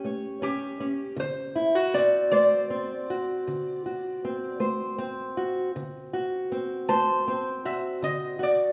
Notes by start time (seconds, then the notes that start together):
Already playing: C#4 G4
0.04 A3 C#5
0.42 C#4 G4
0.80 C#4
1.16 D3 C5
1.55 E4
1.75 F#4
1.94 C4 D5
2.31 A3 C5 D5
2.70 C4
3.10 F#4
3.48 D3
3.86 F#4
4.25 C4
4.60 A3 C5
4.98 C4
5.37 F#4
5.76 D3
6.13 F#4
6.52 C4
6.89 A3 C5 A5
7.28 C4
7.65 F#4 E5
8.02 D3 D#5
8.39 F#4
8.43 D5